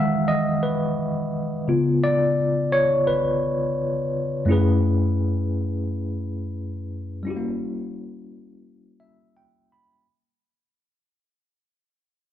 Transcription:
0, 0, Header, 1, 2, 480
1, 0, Start_track
1, 0, Tempo, 697674
1, 1154, Time_signature, 4, 2, 24, 8
1, 8478, End_track
2, 0, Start_track
2, 0, Title_t, "Tine electric piano"
2, 0, Program_c, 0, 4
2, 0, Control_c, 0, 64, 127
2, 0, Note_on_c, 0, 51, 66
2, 0, Note_on_c, 0, 52, 59
2, 0, Note_on_c, 0, 56, 57
2, 0, Note_on_c, 0, 76, 104
2, 0, Note_on_c, 0, 77, 95
2, 0, Note_on_c, 0, 78, 121
2, 193, Note_on_c, 0, 75, 102
2, 198, Note_off_c, 0, 76, 0
2, 288, Note_off_c, 0, 52, 0
2, 291, Note_off_c, 0, 56, 0
2, 293, Note_off_c, 0, 51, 0
2, 416, Note_off_c, 0, 75, 0
2, 433, Note_on_c, 0, 71, 84
2, 886, Note_off_c, 0, 71, 0
2, 1154, Note_on_c, 0, 49, 57
2, 1162, Control_c, 0, 64, 0
2, 1162, Note_on_c, 0, 59, 48
2, 1162, Note_on_c, 0, 65, 64
2, 1163, Note_off_c, 0, 77, 0
2, 1164, Note_off_c, 0, 78, 0
2, 1294, Control_c, 0, 64, 127
2, 1401, Note_on_c, 0, 74, 108
2, 1874, Note_on_c, 0, 73, 105
2, 1891, Note_off_c, 0, 74, 0
2, 2097, Note_off_c, 0, 73, 0
2, 2113, Note_on_c, 0, 71, 91
2, 2806, Note_off_c, 0, 71, 0
2, 3047, Note_off_c, 0, 49, 0
2, 3051, Note_off_c, 0, 59, 0
2, 3051, Note_off_c, 0, 65, 0
2, 3063, Note_on_c, 0, 42, 76
2, 3069, Note_on_c, 0, 57, 70
2, 3082, Control_c, 0, 64, 0
2, 3084, Note_on_c, 0, 61, 73
2, 3090, Note_on_c, 0, 64, 67
2, 3101, Note_on_c, 0, 68, 72
2, 3111, Note_on_c, 0, 71, 86
2, 3215, Control_c, 0, 64, 127
2, 4962, Note_off_c, 0, 42, 0
2, 4965, Note_off_c, 0, 57, 0
2, 4973, Note_off_c, 0, 61, 0
2, 4974, Note_on_c, 0, 55, 70
2, 4976, Note_off_c, 0, 64, 0
2, 4981, Note_off_c, 0, 68, 0
2, 4986, Note_off_c, 0, 71, 0
2, 4988, Note_on_c, 0, 61, 73
2, 4999, Note_on_c, 0, 64, 67
2, 5004, Control_c, 0, 64, 0
2, 5009, Note_on_c, 0, 66, 65
2, 5024, Note_on_c, 0, 67, 67
2, 5062, Note_off_c, 0, 67, 0
2, 5067, Note_on_c, 0, 58, 82
2, 5131, Control_c, 0, 64, 127
2, 6192, Note_on_c, 0, 76, 71
2, 6417, Note_off_c, 0, 76, 0
2, 6444, Note_on_c, 0, 79, 73
2, 6664, Note_off_c, 0, 79, 0
2, 6689, Note_on_c, 0, 83, 66
2, 6879, Note_off_c, 0, 55, 0
2, 6886, Note_off_c, 0, 61, 0
2, 6892, Note_off_c, 0, 64, 0
2, 6896, Note_off_c, 0, 66, 0
2, 6907, Note_off_c, 0, 83, 0
2, 6925, Note_off_c, 0, 58, 0
2, 6927, Control_c, 0, 64, 0
2, 8478, End_track
0, 0, End_of_file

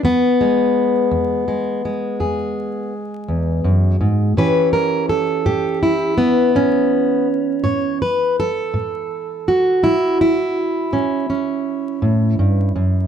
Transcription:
0, 0, Header, 1, 2, 480
1, 0, Start_track
1, 0, Tempo, 724638
1, 21, Time_signature, 12, 3, 24, 8
1, 4821, Tempo, 730816
1, 8626, End_track
2, 0, Start_track
2, 0, Title_t, "Steel-string acoustic guitar"
2, 0, Program_c, 0, 25
2, 22, Note_on_c, 0, 40, 61
2, 31, Note_on_c, 0, 59, 99
2, 270, Note_on_c, 0, 56, 44
2, 451, Note_off_c, 0, 40, 0
2, 738, Note_on_c, 0, 40, 70
2, 972, Note_off_c, 0, 56, 0
2, 980, Note_on_c, 0, 56, 41
2, 1168, Note_off_c, 0, 40, 0
2, 1217, Note_off_c, 0, 56, 0
2, 1227, Note_on_c, 0, 56, 42
2, 1456, Note_on_c, 0, 40, 66
2, 1459, Note_on_c, 0, 68, 46
2, 1887, Note_off_c, 0, 40, 0
2, 1939, Note_off_c, 0, 59, 0
2, 2176, Note_on_c, 0, 40, 55
2, 2412, Note_off_c, 0, 40, 0
2, 2414, Note_on_c, 0, 42, 54
2, 2651, Note_off_c, 0, 42, 0
2, 2654, Note_on_c, 0, 44, 57
2, 2867, Note_off_c, 0, 68, 0
2, 2893, Note_off_c, 0, 44, 0
2, 2895, Note_on_c, 0, 45, 64
2, 2898, Note_on_c, 0, 52, 45
2, 2899, Note_off_c, 0, 56, 0
2, 2902, Note_on_c, 0, 61, 45
2, 2904, Note_on_c, 0, 71, 94
2, 2907, Note_on_c, 0, 67, 43
2, 3130, Note_off_c, 0, 71, 0
2, 3133, Note_on_c, 0, 70, 73
2, 3327, Note_off_c, 0, 45, 0
2, 3372, Note_off_c, 0, 70, 0
2, 3375, Note_on_c, 0, 69, 79
2, 3613, Note_off_c, 0, 67, 0
2, 3616, Note_on_c, 0, 45, 75
2, 3616, Note_on_c, 0, 67, 80
2, 3855, Note_off_c, 0, 69, 0
2, 3860, Note_on_c, 0, 64, 75
2, 4048, Note_off_c, 0, 45, 0
2, 4088, Note_off_c, 0, 67, 0
2, 4091, Note_on_c, 0, 59, 81
2, 4339, Note_on_c, 0, 45, 64
2, 4342, Note_off_c, 0, 61, 0
2, 4344, Note_on_c, 0, 61, 84
2, 4580, Note_off_c, 0, 64, 0
2, 4772, Note_off_c, 0, 45, 0
2, 4816, Note_off_c, 0, 59, 0
2, 5056, Note_on_c, 0, 73, 89
2, 5062, Note_on_c, 0, 45, 70
2, 5296, Note_off_c, 0, 73, 0
2, 5301, Note_off_c, 0, 61, 0
2, 5307, Note_on_c, 0, 71, 72
2, 5491, Note_off_c, 0, 45, 0
2, 5542, Note_off_c, 0, 71, 0
2, 5556, Note_on_c, 0, 69, 97
2, 5780, Note_on_c, 0, 45, 65
2, 6209, Note_off_c, 0, 45, 0
2, 6268, Note_on_c, 0, 66, 80
2, 6498, Note_off_c, 0, 69, 0
2, 6498, Note_on_c, 0, 45, 72
2, 6501, Note_on_c, 0, 64, 86
2, 6737, Note_off_c, 0, 64, 0
2, 6747, Note_on_c, 0, 64, 87
2, 6929, Note_off_c, 0, 45, 0
2, 6982, Note_off_c, 0, 66, 0
2, 7217, Note_on_c, 0, 45, 67
2, 7220, Note_on_c, 0, 61, 45
2, 7453, Note_off_c, 0, 61, 0
2, 7461, Note_on_c, 0, 61, 45
2, 7649, Note_off_c, 0, 45, 0
2, 7936, Note_on_c, 0, 45, 59
2, 8176, Note_off_c, 0, 45, 0
2, 8179, Note_on_c, 0, 43, 60
2, 8416, Note_off_c, 0, 43, 0
2, 8419, Note_on_c, 0, 42, 65
2, 8626, Note_off_c, 0, 42, 0
2, 8626, Note_off_c, 0, 52, 0
2, 8626, Note_off_c, 0, 61, 0
2, 8626, Note_off_c, 0, 64, 0
2, 8626, End_track
0, 0, End_of_file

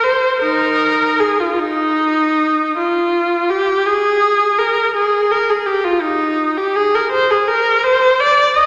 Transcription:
0, 0, Header, 1, 2, 480
1, 0, Start_track
1, 0, Key_signature, -3, "major"
1, 0, Tempo, 781250
1, 252, Time_signature, 6, 3, 24, 8
1, 1698, Tempo, 723764
1, 5611, End_track
2, 0, Start_track
2, 0, Title_t, "Viola"
2, 0, Program_c, 0, 41
2, 24, Note_on_c, 0, 72, 95
2, 255, Note_off_c, 0, 72, 0
2, 256, Note_on_c, 0, 63, 79
2, 256, Note_on_c, 0, 70, 95
2, 712, Note_off_c, 0, 63, 0
2, 727, Note_off_c, 0, 70, 0
2, 736, Note_on_c, 0, 68, 85
2, 856, Note_off_c, 0, 68, 0
2, 861, Note_on_c, 0, 65, 74
2, 979, Note_off_c, 0, 65, 0
2, 980, Note_on_c, 0, 63, 92
2, 1700, Note_off_c, 0, 63, 0
2, 1702, Note_on_c, 0, 65, 89
2, 2179, Note_off_c, 0, 65, 0
2, 2185, Note_on_c, 0, 67, 90
2, 2426, Note_on_c, 0, 68, 100
2, 2427, Note_off_c, 0, 67, 0
2, 2904, Note_off_c, 0, 68, 0
2, 2907, Note_on_c, 0, 70, 86
2, 3143, Note_off_c, 0, 70, 0
2, 3150, Note_on_c, 0, 68, 88
2, 3377, Note_off_c, 0, 68, 0
2, 3390, Note_on_c, 0, 70, 95
2, 3500, Note_off_c, 0, 70, 0
2, 3513, Note_on_c, 0, 68, 82
2, 3619, Note_off_c, 0, 68, 0
2, 3621, Note_on_c, 0, 67, 83
2, 3732, Note_off_c, 0, 67, 0
2, 3743, Note_on_c, 0, 65, 80
2, 3854, Note_off_c, 0, 65, 0
2, 3856, Note_on_c, 0, 63, 85
2, 4219, Note_off_c, 0, 63, 0
2, 4225, Note_on_c, 0, 67, 79
2, 4342, Note_off_c, 0, 67, 0
2, 4346, Note_on_c, 0, 68, 93
2, 4463, Note_off_c, 0, 68, 0
2, 4475, Note_on_c, 0, 70, 80
2, 4585, Note_off_c, 0, 70, 0
2, 4585, Note_on_c, 0, 72, 95
2, 4696, Note_off_c, 0, 72, 0
2, 4711, Note_on_c, 0, 68, 87
2, 4822, Note_off_c, 0, 68, 0
2, 4824, Note_on_c, 0, 70, 98
2, 5060, Note_off_c, 0, 70, 0
2, 5063, Note_on_c, 0, 72, 105
2, 5301, Note_off_c, 0, 72, 0
2, 5306, Note_on_c, 0, 74, 108
2, 5541, Note_off_c, 0, 74, 0
2, 5545, Note_on_c, 0, 75, 90
2, 5611, Note_off_c, 0, 75, 0
2, 5611, End_track
0, 0, End_of_file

